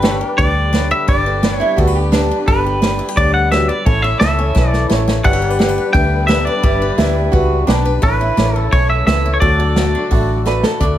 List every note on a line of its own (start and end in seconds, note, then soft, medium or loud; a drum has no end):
0.00 0.21 G1 medium
0.00 3.82 D3 medium
0.00 1.07 G3 medium
0.00 3.82 G3 medium
0.00 3.82 B3 medium
0.00 0.31 D4 medium
0.00 0.72 D4 medium
0.00 3.82 G4 medium
0.00 0.32 G4 medium
0.00 0.20 G4 medium
0.00 0.17 B4 medium
0.00 0.32 B4 medium
0.00 snare loud
0.00 open hi-hat soft
0.04 0.29 A4 medium
0.04 0.25 C#5 medium
0.21 1.08 G4 medium
0.25 3.83 D5 medium
0.29 3.83 B4 medium
0.37 0.91 D2 medium
0.37 1.08 D3 medium
0.37 0.66 D4 medium
0.37 0.67 G4 medium
0.37 0.73 B4 medium
0.37 0.67 B4 medium
0.37 0.87 D5 loud
0.37 kick loud
0.37 open hi-hat soft
0.72 1.01 D4 medium
0.72 1.42 D4 medium
0.72 1.02 G4 medium
0.72 0.90 B4 medium
0.72 1.02 C#5 medium
0.72 snare loud
0.72 open hi-hat soft
0.91 1.26 B4 medium
0.91 1.08 E5 loud
1.08 1.61 G1 medium
1.08 2.47 G3 medium
1.08 1.22 D4 medium
1.08 1.61 G4 medium
1.08 1.23 G4 medium
1.08 1.55 D5 medium
1.08 1.23 D5 medium
1.08 kick loud
1.08 open hi-hat soft
1.25 1.40 D4 medium
1.25 1.40 G4 medium
1.25 1.41 A4 medium
1.25 1.43 B4 medium
1.42 1.71 D4 medium
1.42 2.12 D4 medium
1.42 1.72 G4 medium
1.42 1.78 B4 medium
1.42 1.72 D5 medium
1.42 snare loud
1.42 open hi-hat soft
1.55 1.74 C#5 medium
1.60 1.77 E4 medium
1.60 2.46 G4 medium
1.77 2.30 D2 medium
1.77 2.48 D3 medium
1.77 2.06 D4 medium
1.77 1.94 F#4 medium
1.77 2.06 G4 medium
1.77 1.87 A4 medium
1.77 2.07 B4 medium
1.77 kick loud
1.77 open hi-hat soft
1.87 2.12 B4 medium
1.95 2.11 G4 medium
2.12 2.37 D4 medium
2.12 2.41 D4 medium
2.12 2.46 D4 medium
2.12 2.41 G4 medium
2.12 2.41 B4 loud
2.12 2.30 B4 medium
2.12 snare medium
2.12 open hi-hat medium
2.31 2.46 B4 medium
2.46 3.00 G1 medium
2.46 3.68 G3 medium
2.46 2.61 D4 loud
2.46 2.61 G4 medium
2.46 2.65 G4 medium
2.46 2.62 A4 loud
2.46 3.19 B4 medium
2.46 kick loud
2.46 open hi-hat medium
2.65 2.79 G4 medium
2.65 2.81 G4 medium
2.65 2.79 A4 medium
2.81 3.10 D4 medium
2.81 3.84 D4 medium
2.81 3.10 G4 medium
2.81 2.98 G4 medium
2.81 3.11 B4 medium
2.81 snare loud
2.81 open hi-hat medium
2.99 3.09 E4 medium
3.09 3.86 G4 medium
3.16 3.69 D2 medium
3.16 3.51 D3 medium
3.16 3.45 D4 medium
3.16 3.45 G4 medium
3.16 3.85 B4 medium
3.16 3.45 C#5 medium
3.16 3.33 D5 loud
3.16 kick loud
3.16 open hi-hat soft
3.34 3.51 F#5 loud
3.50 3.69 F#3 medium
3.50 3.79 D4 medium
3.50 3.80 G4 medium
3.50 3.80 B4 medium
3.50 3.68 E5 medium
3.50 snare loud
3.50 open hi-hat soft
3.68 3.86 G3 medium
3.68 3.85 D5 medium
3.85 4.12 A1 medium
3.85 5.25 A2 medium
3.85 5.23 C#3 medium
3.85 5.23 E3 medium
3.85 5.24 A3 medium
3.85 4.37 C#4 medium
3.85 4.00 E4 medium
3.85 5.23 E4 medium
3.85 4.00 A4 medium
3.85 4.02 C#5 medium
3.85 4.01 C#5 loud
3.85 kick loud
3.85 open hi-hat soft
4.02 4.17 E4 medium
4.02 4.17 A4 medium
4.02 4.18 C#5 medium
4.02 4.89 C#5 medium
4.02 4.18 E5 medium
4.20 4.50 C#2 medium
4.20 4.88 A3 medium
4.20 4.49 E4 medium
4.20 4.54 E4 soft
4.20 5.24 A4 medium
4.20 4.49 A4 medium
4.20 4.41 D5 medium
4.20 4.69 E5 loud
4.20 4.50 E5 medium
4.20 snare loud
4.20 open hi-hat soft
4.39 5.23 C#4 medium
4.39 5.24 C#5 medium
4.55 4.85 B1 medium
4.55 5.23 E3 medium
4.55 4.84 E4 medium
4.55 5.06 E4 medium
4.55 4.84 A4 medium
4.55 4.84 B4 medium
4.55 kick loud
4.55 snare medium
4.69 4.86 D5 loud
4.73 snare medium
4.89 5.20 A1 medium
4.89 5.23 A3 medium
4.89 5.18 E4 loud
4.89 5.19 A4 medium
4.89 5.23 C#5 medium
4.89 5.19 C#5 loud
4.89 snare medium
5.08 5.23 E4 medium
5.08 snare medium
5.24 5.77 G1 loud
5.24 6.62 G3 medium
5.24 8.00 G3 medium
5.24 8.00 B3 medium
5.24 8.00 D4 medium
5.24 5.33 E4 medium
5.24 5.39 G4 medium
5.24 5.49 A4 medium
5.24 8.00 B4 medium
5.24 5.39 B4 medium
5.24 5.46 C#5 medium
5.24 5.39 D5 loud
5.24 5.90 F#5 medium
5.24 kick loud
5.24 open hi-hat medium
5.33 5.77 G4 medium
5.42 5.50 A4 medium
5.46 7.99 B4 medium
5.46 8.00 D5 medium
5.50 5.59 B4 medium
5.58 6.27 D4 medium
5.58 5.87 G4 medium
5.58 5.69 A4 medium
5.58 5.88 B4 medium
5.58 5.88 D5 medium
5.58 snare loud
5.58 open hi-hat medium
5.69 5.94 B4 medium
5.78 6.62 G4 medium
5.93 6.47 D2 medium
5.93 6.64 D3 medium
5.93 6.22 G4 medium
5.93 6.22 B4 medium
5.93 6.28 B4 medium
5.93 6.23 E5 medium
5.93 6.26 G5 loud
5.93 kick loud
5.93 open hi-hat soft
6.27 6.61 D4 medium
6.27 6.57 G4 medium
6.27 6.57 B4 medium
6.27 6.46 B4 medium
6.27 6.45 E5 medium
6.27 6.58 E5 medium
6.27 snare loud
6.27 open hi-hat soft
6.45 6.62 B4 medium
6.45 7.15 D5 medium
6.63 6.90 G1 medium
6.63 8.02 G3 medium
6.63 6.77 G4 loud
6.63 7.16 G4 medium
6.63 6.78 B4 medium
6.63 6.78 E5 loud
6.63 kick loud
6.63 open hi-hat soft
6.80 6.95 G4 medium
6.80 6.95 B4 soft
6.80 6.97 B4 medium
6.98 7.28 D2 medium
6.98 7.66 D4 medium
6.98 7.32 E4 medium
6.98 7.27 G4 medium
6.98 7.32 B4 medium
6.98 7.27 B4 medium
6.98 7.27 E5 loud
6.98 snare loud
6.98 open hi-hat medium
7.32 7.63 C#2 medium
7.32 7.66 F#4 medium
7.32 7.61 G4 medium
7.32 7.67 B4 medium
7.32 7.61 B4 medium
7.32 7.62 E5 medium
7.32 kick loud
7.32 open hi-hat soft
7.66 7.97 B1 medium
7.66 7.93 D4 medium
7.66 8.00 D4 medium
7.66 7.95 G4 loud
7.66 7.96 B4 medium
7.66 7.84 B4 medium
7.66 7.96 D5 loud
7.66 snare loud
7.66 open hi-hat soft
7.85 8.01 B4 medium
8.02 8.29 A1 medium
8.02 9.41 A2 medium
8.02 9.41 C#3 medium
8.02 9.40 E3 medium
8.02 10.79 A3 medium
8.02 8.55 C#4 medium
8.02 8.16 E4 medium
8.02 9.41 E4 medium
8.02 8.16 A4 medium
8.02 8.56 B4 medium
8.02 8.17 C#5 loud
8.02 kick loud
8.02 open hi-hat medium
8.20 8.34 E4 medium
8.20 8.36 E4 medium
8.20 8.34 A4 medium
8.20 8.35 E5 medium
8.37 8.67 A1 medium
8.37 9.07 A3 medium
8.37 8.65 E4 medium
8.37 8.72 E4 medium
8.37 8.66 A4 medium
8.37 8.62 B4 medium
8.37 8.66 C#5 medium
8.37 8.58 D5 medium
8.37 snare loud
8.37 open hi-hat medium
8.56 9.40 C#4 medium
8.56 8.74 A4 medium
8.56 9.41 C#5 medium
8.62 9.40 A4 medium
8.72 9.02 B1 medium
8.72 9.40 E3 medium
8.72 9.00 E4 medium
8.72 9.24 E4 medium
8.72 9.01 A4 medium
8.72 8.89 C#5 loud
8.72 9.01 C#5 medium
8.72 kick loud
8.72 open hi-hat medium
8.90 9.06 E5 loud
9.06 9.36 C#2 medium
9.06 9.76 A3 medium
9.06 9.35 E4 medium
9.06 9.35 A4 medium
9.06 9.35 B4 medium
9.06 9.40 C#5 medium
9.06 9.33 E5 loud
9.06 snare loud
9.06 open hi-hat medium
9.26 9.42 E4 medium
9.34 9.40 C#5 medium
9.40 9.94 D2 loud
9.40 10.79 D3 medium
9.40 10.80 F#3 medium
9.40 9.94 D4 medium
9.40 9.55 F#4 medium
9.40 10.79 F#4 medium
9.40 9.55 A4 medium
9.40 10.79 A4 medium
9.40 9.62 C#5 medium
9.40 10.41 D5 medium
9.40 9.56 D5 medium
9.40 kick loud
9.40 open hi-hat medium
9.58 9.72 F#4 medium
9.58 9.73 A4 medium
9.58 10.45 A4 medium
9.58 9.73 D5 medium
9.62 10.80 D5 medium
9.75 10.44 A3 medium
9.75 10.04 F#4 medium
9.75 10.10 F#4 medium
9.75 10.05 A4 medium
9.75 10.05 D5 medium
9.75 snare loud
9.75 open hi-hat soft
9.95 10.79 D4 medium
10.11 10.63 A1 medium
10.11 10.80 A2 medium
10.11 10.39 F#4 medium
10.11 10.63 F#4 medium
10.11 10.40 A4 medium
10.11 10.40 E5 medium
10.11 kick loud
10.11 open hi-hat medium
10.46 10.78 A3 medium
10.46 10.74 F#4 medium
10.46 10.82 A4 medium
10.46 10.74 A4 medium
10.46 10.64 B4 medium
10.46 10.75 D5 loud
10.46 snare medium
10.63 10.79 F#4 medium
10.63 10.81 A4 medium
10.63 snare medium
10.80 10.98 D2 medium
10.80 10.98 D3 medium
10.80 10.98 A3 medium
10.80 10.98 D4 medium
10.80 10.98 F#4 medium
10.80 10.98 A4 medium
10.80 10.98 D5 medium
10.80 kick loud
10.80 closed hi-hat medium